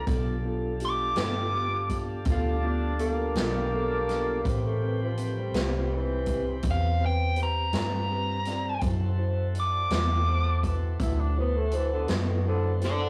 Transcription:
0.06 1.14 B1 medium
0.06 4.42 G3 medium
0.06 0.35 B3 medium
0.06 4.42 D4 medium
0.06 0.35 F4 medium
0.06 4.42 F4 medium
0.06 0.35 A4 medium
0.06 4.42 A4 medium
0.06 kick loud
0.06 closed hi-hat medium
0.45 0.72 B3 medium
0.45 0.72 F4 medium
0.45 0.73 A4 medium
0.80 1.08 B3 soft
0.80 1.09 F4 soft
0.80 1.09 G4 medium
0.80 closed hi-hat medium
0.85 1.19 D6 medium
1.16 2.23 G1 medium
1.16 1.45 B3 soft
1.16 1.45 F4 soft
1.16 1.45 A4 medium
1.16 snare loud
1.16 closed hi-hat medium
1.21 2.61 D6 medium
1.54 1.81 B3 medium
1.54 1.81 F4 soft
1.54 1.82 G4 medium
1.89 2.17 B3 soft
1.89 2.18 F4 soft
1.89 2.18 G4 medium
1.89 kick medium
1.89 closed hi-hat medium
2.25 3.33 D2 medium
2.25 2.54 B3 medium
2.25 2.55 F4 medium
2.25 2.55 A4 medium
2.25 kick loud
2.25 closed hi-hat medium
2.30 2.67 F4 medium
2.63 2.90 B3 medium
2.63 2.99 D4 medium
2.63 2.91 F4 medium
2.63 2.91 G4 medium
2.98 4.60 A#3 medium
2.98 3.26 B3 medium
2.98 3.27 F4 medium
2.98 3.27 A4 medium
2.98 closed hi-hat medium
3.35 4.42 B1 medium
3.35 3.64 B3 medium
3.35 3.64 F4 medium
3.35 3.64 A4 medium
3.35 snare loud
3.35 closed hi-hat medium
3.73 4.00 B3 medium
3.73 4.01 F4 medium
3.73 4.01 A4 medium
4.09 4.37 B3 medium
4.09 4.37 F4 soft
4.09 4.37 A4 medium
4.09 snare soft
4.09 closed hi-hat medium
4.43 5.51 A1 medium
4.43 4.72 C4 medium
4.43 8.77 C4 medium
4.43 8.77 G4 medium
4.43 4.73 G4 medium
4.43 8.77 B4 medium
4.43 4.73 B4 medium
4.43 kick loud
4.43 closed hi-hat medium
4.65 5.00 A3 medium
4.81 5.09 C4 medium
4.81 5.09 G4 medium
4.81 5.10 B4 medium
5.02 5.40 F3 medium
5.17 5.45 C4 medium
5.17 5.46 G4 medium
5.17 5.46 B4 medium
5.17 closed hi-hat medium
5.39 5.97 G3 medium
5.53 6.60 C2 medium
5.53 5.82 C4 medium
5.53 5.82 G4 medium
5.53 5.82 B4 medium
5.53 snare loud
5.53 closed hi-hat medium
5.91 6.18 C4 medium
5.91 6.19 G4 medium
5.91 6.19 B4 medium
5.95 6.46 E3 medium
6.26 6.55 C4 medium
6.26 6.55 G4 medium
6.26 6.55 B4 medium
6.26 kick medium
6.26 closed hi-hat medium
6.63 7.70 E2 medium
6.63 6.91 C4 soft
6.63 6.91 G4 soft
6.63 6.91 B4 medium
6.63 kick loud
6.63 closed hi-hat medium
6.71 7.03 F5 medium
7.00 7.27 C4 medium
7.00 7.28 G4 soft
7.00 7.28 B4 medium
7.06 7.38 G5 medium
7.36 7.64 C4 medium
7.36 7.64 G4 soft
7.36 7.64 B4 medium
7.36 closed hi-hat medium
7.43 7.75 A#5 medium
7.73 8.79 G2 medium
7.73 8.00 C4 medium
7.73 8.00 G4 soft
7.73 8.01 B4 medium
7.73 snare loud
7.73 closed hi-hat medium
7.78 8.81 A#5 medium
8.10 8.37 C4 medium
8.10 8.37 G4 medium
8.10 8.37 B4 medium
8.45 8.73 C4 soft
8.45 8.73 G4 soft
8.45 8.74 D5 medium
8.45 snare soft
8.45 closed hi-hat medium
8.81 9.88 F#2 medium
8.81 9.09 E4 medium
8.81 13.09 E4 medium
8.81 9.09 F#4 medium
8.81 13.09 F#4 medium
8.81 13.09 A4 medium
8.81 13.09 C5 medium
8.81 9.09 C5 medium
8.81 kick loud
8.81 closed hi-hat medium
9.18 9.45 E4 medium
9.18 9.45 F#4 medium
9.18 9.46 C5 medium
9.53 9.81 E4 medium
9.53 9.82 F#4 soft
9.53 9.82 D5 medium
9.53 closed hi-hat medium
9.60 9.93 D6 medium
9.90 10.96 E2 medium
9.90 10.18 E4 medium
9.90 10.18 F#4 soft
9.90 10.18 C5 medium
9.90 11.34 D6 medium
9.90 snare loud
9.90 closed hi-hat medium
10.27 10.55 E4 soft
10.27 10.55 F#4 soft
10.27 10.55 C5 medium
10.63 10.91 E4 medium
10.63 10.91 F#4 soft
10.63 10.92 B4 medium
10.63 kick medium
10.63 closed hi-hat medium
10.99 12.05 D2 medium
10.99 11.27 E4 medium
10.99 11.21 E4 medium
10.99 11.27 F#4 medium
10.99 11.28 B4 medium
10.99 kick medium
10.99 closed hi-hat medium
11.20 11.36 D4 medium
11.37 11.58 B3 medium
11.37 11.64 E4 medium
11.37 11.64 F#4 medium
11.37 11.64 C5 medium
11.56 11.78 A3 medium
11.71 12.00 E4 medium
11.71 12.00 F#4 medium
11.71 12.00 C5 medium
11.71 closed hi-hat medium
11.77 11.92 E3 medium
11.93 12.13 D3 medium
12.08 13.09 F#2 medium
12.08 12.46 B2 medium
12.08 12.36 E4 medium
12.08 12.36 F#4 medium
12.08 12.37 A4 medium
12.08 snare loud
12.08 closed hi-hat medium
12.45 12.82 D3 medium
12.45 12.72 E4 medium
12.45 12.73 F#4 medium
12.45 12.73 C5 medium
12.80 13.08 E4 medium
12.80 13.08 F#4 soft
12.80 13.08 C5 medium
12.80 snare soft
12.80 closed hi-hat medium
12.85 13.09 A4 medium
12.85 13.09 D5 medium

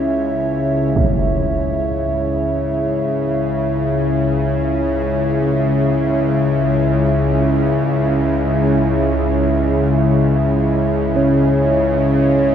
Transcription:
0.00 0.94 C#2 medium
0.00 0.94 C#3 medium
0.00 0.97 C#3 medium
0.00 0.96 C#4 medium
0.00 12.55 E4 medium
0.00 12.55 C#5 medium
0.00 12.55 E5 medium
0.95 12.55 C#2 medium
0.95 12.55 C#3 medium
0.95 12.55 G#3 medium
0.95 impact medium
11.16 12.55 C#4 medium
11.16 12.55 C#5 medium

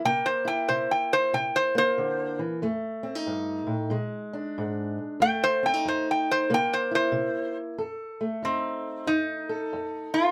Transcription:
0.05 0.64 C3 medium
0.05 1.74 A#3 medium
0.05 0.26 G5 loud
0.26 0.46 C5 medium
0.45 2.59 E4 medium
0.45 0.68 G5 medium
0.69 1.29 C3 medium
0.69 0.89 C5 medium
0.91 1.12 G5 medium
1.13 1.33 C5 medium
1.33 1.93 C3 medium
1.33 1.54 G5 medium
1.56 1.76 C5 medium
1.75 2.60 A#3 medium
1.75 2.40 C5 loud
1.98 2.39 D3 medium
2.39 2.63 E3 medium
2.62 3.22 F2 medium
2.62 3.89 A3 medium
3.03 3.15 C4 medium
3.15 3.92 D#4 soft
3.27 3.66 G2 medium
3.67 3.91 A2 medium
3.90 4.51 A#2 medium
3.90 5.20 G#3 medium
4.33 5.18 D4 medium
4.58 4.98 G#2 medium
5.20 5.80 F2 medium
5.20 6.47 A3 medium
5.20 5.42 G5 loud
5.44 5.64 C5 medium
5.63 5.74 C4 medium
5.63 5.86 G5 medium
5.74 6.50 D#4 soft
5.85 6.45 F2 medium
5.85 6.08 C5 medium
6.11 6.30 G5 medium
6.31 6.51 C5 medium
6.50 7.10 C3 medium
6.50 7.76 A#3 medium
6.54 6.73 G5 loud
6.74 6.93 C5 medium
6.91 7.76 E4 medium
6.91 7.57 C5 medium
7.12 7.73 C3 medium
7.78 8.38 F2 medium
7.78 9.48 A4 medium
8.21 10.31 A3 medium
8.43 9.03 F2 medium
8.43 9.11 C4 medium
8.43 10.12 D#4 soft
9.07 9.67 F2 medium
9.07 10.16 D#4 medium
9.49 10.31 A4 medium
9.73 10.31 F2 medium
10.14 10.31 D#4 medium
10.14 10.31 F4 medium

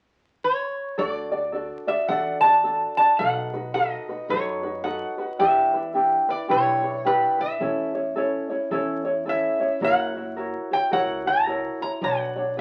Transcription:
0.44 0.98 C#5 medium
0.98 1.70 D2 medium
0.98 1.32 D4 medium
0.98 1.31 F#4 medium
0.98 1.32 A4 medium
0.98 1.88 D5 medium
0.98 1.30 D5 medium
1.32 1.52 D4 soft
1.32 1.53 F#4 soft
1.32 1.53 D5 medium
1.52 1.88 D4 soft
1.52 1.87 F#4 medium
1.52 1.87 A4 soft
1.52 1.86 D5 medium
1.87 2.09 D4 soft
1.87 2.09 F#4 soft
1.87 2.08 D5 soft
1.87 2.08 E5 medium
2.08 2.80 A1 medium
2.08 2.43 D4 medium
2.08 2.43 F#4 medium
2.08 2.43 A4 medium
2.08 2.42 D5 medium
2.08 2.40 F#5 medium
2.41 2.64 F#4 soft
2.41 2.64 D5 soft
2.41 2.96 A5 loud
2.45 2.64 D4 soft
2.64 2.98 D4 medium
2.64 2.99 F#4 medium
2.64 2.98 A4 medium
2.64 2.98 D5 medium
2.97 3.20 D4 soft
2.97 3.20 F#4 soft
2.97 3.19 D5 soft
2.97 3.19 A5 medium
3.19 3.91 B1 medium
3.19 3.54 D#4 medium
3.19 3.54 F#4 medium
3.19 3.53 A4 medium
3.19 3.52 B4 medium
3.19 3.74 F#5 medium
3.53 3.74 D#4 soft
3.53 3.74 F#4 soft
3.53 3.74 B4 soft
3.74 4.09 D#4 soft
3.74 4.09 F#4 medium
3.74 4.08 A4 medium
3.74 4.08 B4 medium
3.74 4.30 D#5 medium
4.09 4.29 D#4 soft
4.09 4.30 F#4 soft
4.09 4.29 B4 soft
4.29 5.01 F#2 medium
4.29 4.64 D#4 medium
4.29 4.63 F#4 medium
4.29 4.63 A4 medium
4.29 4.62 B4 medium
4.29 4.87 C#5 medium
4.63 4.83 D#4 soft
4.63 4.84 F#4 soft
4.63 4.83 B4 medium
4.84 5.19 D#4 medium
4.84 5.18 F#4 medium
4.84 5.18 A4 medium
4.84 5.17 B4 medium
4.84 5.39 F#5 medium
5.18 5.39 D#4 soft
5.18 5.40 F#4 soft
5.18 5.39 B4 soft
5.39 6.11 E2 medium
5.39 5.74 D4 medium
5.39 5.73 E4 medium
5.39 5.74 G4 medium
5.39 5.72 B4 medium
5.39 5.91 E5 medium
5.74 5.94 D4 soft
5.74 5.94 E4 soft
5.74 5.95 B4 soft
5.94 6.29 D4 medium
5.94 6.29 E4 medium
5.94 6.29 G4 medium
5.94 6.27 B4 medium
6.29 6.48 D4 soft
6.29 6.49 E4 soft
6.29 6.49 B4 medium
6.29 6.49 D5 medium
6.49 7.22 B1 medium
6.49 6.84 D4 medium
6.49 6.83 E4 medium
6.49 6.83 G4 medium
6.49 6.82 B4 medium
6.49 7.07 C#5 medium
6.84 7.05 D4 soft
6.84 7.05 E4 soft
6.84 7.05 B4 soft
7.05 7.39 D4 medium
7.05 7.39 E4 medium
7.05 7.39 G4 medium
7.05 7.41 B4 medium
7.05 7.37 B4 medium
7.39 7.61 D4 soft
7.39 7.60 E4 soft
7.39 7.60 B4 soft
7.39 9.02 E5 medium
7.60 8.32 A1 medium
7.60 7.95 C#4 medium
7.60 7.94 E4 medium
7.60 7.94 A4 medium
7.60 7.93 C#5 medium
7.95 8.15 C#4 soft
7.95 8.16 E4 soft
7.95 8.15 C#5 soft
8.16 8.50 C#4 medium
8.16 8.50 E4 medium
8.16 8.50 A4 medium
8.16 8.48 C#5 medium
8.50 8.71 C#4 soft
8.50 8.71 E4 soft
8.50 8.71 C#5 medium
8.71 9.43 E2 medium
8.71 9.05 C#4 medium
8.71 9.05 E4 medium
8.71 9.05 A4 medium
8.71 9.04 C#5 medium
9.05 9.25 C#4 soft
9.05 9.26 E4 soft
9.05 9.26 C#5 medium
9.26 9.60 C#4 medium
9.26 9.60 E4 medium
9.26 9.60 A4 medium
9.26 9.59 C#5 medium
9.26 9.84 E5 medium
9.60 9.82 C#4 soft
9.60 9.81 E4 soft
9.60 9.81 C#5 soft
9.81 10.53 F#1 medium
9.81 10.16 E4 medium
9.81 10.15 F#4 medium
9.81 10.15 A#4 medium
9.81 10.14 C#5 medium
9.81 10.73 F#5 medium
10.15 10.36 E4 soft
10.15 10.37 F#4 soft
10.15 10.36 C#5 soft
10.37 10.71 E4 soft
10.37 10.71 F#4 medium
10.37 10.71 A#4 soft
10.37 10.70 C#5 medium
10.71 10.91 E4 soft
10.71 10.91 F#4 soft
10.71 10.91 C#5 soft
10.71 10.93 G5 medium
10.91 11.64 C#2 medium
10.91 11.26 E4 medium
10.91 11.26 F#4 medium
10.91 11.26 A#4 medium
10.91 11.25 C#5 medium
10.91 11.27 F#5 loud
11.26 11.47 E4 soft
11.26 11.47 F#4 soft
11.26 11.47 C#5 soft
11.26 11.81 A#5 loud
11.47 11.81 E4 medium
11.47 11.82 F#4 medium
11.47 11.81 A#4 medium
11.47 11.80 C#5 medium
11.82 12.03 E4 soft
11.82 12.02 F#4 soft
11.82 12.02 C#5 soft
11.82 12.03 A#5 medium
12.01 12.61 B1 medium
12.01 12.36 D4 medium
12.01 12.36 F#4 medium
12.01 12.36 B4 medium
12.01 12.35 C#5 medium
12.01 12.58 F#5 medium
12.36 12.57 D4 soft
12.36 12.57 F#4 soft
12.36 12.57 C#5 soft
12.57 12.61 B4 medium

